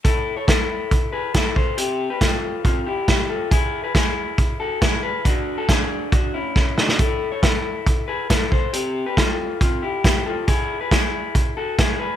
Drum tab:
HH |x---x---x---x---|x---x---x---x---|x---x---x---x---|x---x---x-------|
SD |----o-------o---|----o-------o---|----o-------o---|----o-------o-oo|
BD |o---o---o---o-o-|----o---o---o---|o---o---o---o---|o---o---o---o---|

HH |x---x---x---x---|x---x---x---x---|x---x---x---x---|
SD |----o-------o---|----o-------o---|----o-------o---|
BD |o---o---o---o-o-|----o---o---o---|o---o---o---o---|